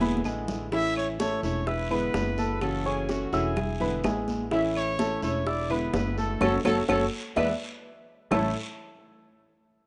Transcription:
Already playing: upright bass E1, trumpet G#4
0.01 nylon-string guitar D3 G#3 B3 E4, grand piano B3 B4 B5, high conga
0.17 high conga
0.24 upright bass A1, nylon-string guitar D3 G#3 B3 E4, grand piano G#3 G#4 G#5, short guiro, claves
0.48 low conga, short guiro
0.72 nylon-string guitar E3 A3 C#4 E4, grand piano E3 E4 E5, trumpet E5, high bongo, high conga, long guiro
0.96 trumpet C#5, high conga, claves
1.20 nylon-string guitar E3 A3 C#4 E4, grand piano A3 A4 A5, trumpet C#5, high bongo, high conga, short guiro
1.43 upright bass E1, nylon-string guitar A3 C#4 E4, trumpet C#5, short guiro
1.67 grand piano E4 E5 E6, trumpet B4, muted nylon-string guitar stroke, high bongo, high conga, long guiro
1.91 nylon-string guitar D3 G#3 B3 E4, grand piano B3 B4 B5, trumpet B4, high conga, claves
2.14 upright bass F#1, nylon-string guitar D3 G#3 B3 E4, high bongo, low bongo, high conga, short guiro
2.38 grand piano A4 A5, high conga, short guiro
2.61 nylon-string guitar C#3 E3 A3 C#4 F#4, trumpet A4, high bongo, high conga, long guiro, claves
2.85 grand piano C#4 C#5 C#6, trumpet G#4, high bongo, high conga
3.09 nylon-string guitar E3 A3 C#4 F#4, trumpet F#4, high bongo, high conga, short guiro
3.33 upright bass E1, nylon-string guitar E3 A3 C#4 F#4, grand piano E4 E5 E6, trumpet G#4, high bongo, short guiro
3.56 muted nylon-string guitar stroke, high bongo, high conga, low conga, long guiro, claves
3.80 nylon-string guitar D3 G#3 B3 E4, grand piano B3 B4 B5, high bongo, high conga, low conga
4.04 upright bass A1, nylon-string guitar D3 G#3 B3 E4, grand piano G#3 G#4 G#5, high bongo, low bongo, high conga, short guiro, claves
4.28 high conga, short guiro
4.51 grand piano E3 E4 E5, nylon-string guitar E3 A3 C#4 E4, trumpet E5, high bongo, high conga, long guiro
4.75 trumpet C#5, high conga, claves
4.99 nylon-string guitar E3 A3 C#4 E4, grand piano A3 A4 A5, high bongo, high conga, short guiro
5.22 upright bass E1, nylon-string guitar A3 C#4 E4, trumpet C#5, short guiro
5.46 grand piano E4 E5 E6, trumpet D5, muted nylon-string guitar stroke, high bongo, high conga, long guiro
5.70 nylon-string guitar D3 G#3 B3 E4, grand piano B3 B4 B5, trumpet B4, high conga, claves
5.93 upright bass F#1, nylon-string guitar D3 G#3 B3 E4, trumpet B4, high bongo, low bongo, high conga, short guiro
6.18 grand piano A3 A4 A5, trumpet A4, short guiro
6.41 upright bass F#1, nylon-string guitar F#3 A3 C#4, grand piano F#4 A4 C#5, trumpet A4, low bongo, high conga, long guiro, claves
6.65 upright bass F#1, nylon-string guitar F#3 A3 C#4, grand piano F#4 A4 C#5, trumpet A4, low bongo, high conga, long guiro, claves
6.88 upright bass F#1, nylon-string guitar F#3 A3 C#4, grand piano F#4 A4 C#5, trumpet A4, low bongo, high conga, long guiro, claves
7.36 upright bass E2, nylon-string guitar E3 G#3 B3, grand piano B4 D5 E5, trumpet B4, low bongo, high conga, long guiro, claves
8.31 upright bass A1, nylon-string guitar A2 E3 A3 C#4 E4, grand piano A3 E4 A4 C#5 E5 A5, trumpet A4, low bongo, low conga, long guiro, claves

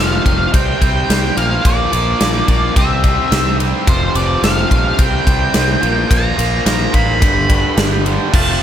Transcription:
Already playing: fingered electric bass F1, distorted electric guitar F2 C3, lead electric guitar F5
0.00 distorted electric guitar F3
0.25 fingered electric bass F1, distorted electric guitar F2 C3 F3, kick, ride
0.52 fingered electric bass C2, distorted electric guitar C3 G3 C4, lead electric guitar G5, kick, ride
0.80 fingered electric bass C2, distorted electric guitar C3 G3 C4, lead electric guitar G5, kick, ride
1.08 fingered electric bass C2, distorted electric guitar C3 G3 C4, snare, ride
1.36 fingered electric bass A#1, distorted electric guitar A#2 F3 A#3, lead electric guitar F5, ride
1.64 fingered electric bass A#1, distorted electric guitar A#2 F3 A#3, lead electric guitar D5, kick, ride
1.91 fingered electric bass A#1, distorted electric guitar A#2 F3 A#3, ride
2.19 fingered electric bass A#1, distorted electric guitar A#2 F3 A#3, snare, ride
2.47 fingered electric bass A#1, distorted electric guitar A#2 F3 A#3, kick, ride
2.75 fingered electric bass C2, distorted electric guitar C3 G3 C4, lead electric guitar E5, kick, ride
3.03 distorted electric guitar C3 G3 C4, kick, ride
3.31 fingered electric bass C2, distorted electric guitar C3 G3 C4, snare, ride
3.59 distorted electric guitar C3 G3 C4, ride
3.87 fingered electric bass F1, distorted electric guitar F2 C3 F3, lead electric guitar C5, kick, ride
4.14 fingered electric bass F1, distorted electric guitar F2 C3 F3, lead electric guitar D5, ride
4.42 fingered electric bass F1, distorted electric guitar F2 C3 F3, lead electric guitar F5, snare, ride
4.70 fingered electric bass A#1, distorted electric guitar F2 C3 F3, kick, ride
4.97 fingered electric bass C2, distorted electric guitar C3 G3 C4, lead electric guitar G5, kick, ride
5.26 fingered electric bass C2, distorted electric guitar C3 G3 C4, kick, ride
5.53 fingered electric bass C2, distorted electric guitar C3 G3 C4, snare, ride
5.82 fingered electric bass A#1, distorted electric guitar A#2 F3 A#3, ride
6.09 fingered electric bass A#1, distorted electric guitar A#2 F3 A#3, lead electric guitar A#5, kick, ride
6.36 fingered electric bass A#1, distorted electric guitar A#2 F3 A#3, ride
6.65 fingered electric bass A#1, distorted electric guitar A#2 F3 A#3, lead electric guitar A#5, snare, ride
6.92 fingered electric bass A1, distorted electric guitar A#2 F3 A#3, lead electric guitar B5, kick, ride
7.20 fingered electric bass G1, distorted electric guitar G2 D3 G3, kick, ride
7.49 distorted electric guitar G2 D3 G3, kick, ride
7.77 fingered electric bass G1, distorted electric guitar G2 D3 G3, snare, ride
8.05 distorted electric guitar G2 D3 G3, ride
8.32 fingered electric bass F1, distorted electric guitar F2 C3 F3 A3 C4 F4, lead electric guitar A5, kick, crash
8.60 distorted electric guitar F3

